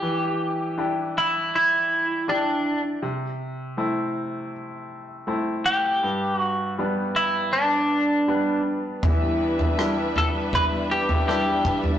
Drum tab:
SD |----------------|----------------|----------------|----r-------r---|
FT |----------------|----------------|----------------|o--o--o-o--o---o|
BD |----------------|----------------|----------------|o-------o-----o-|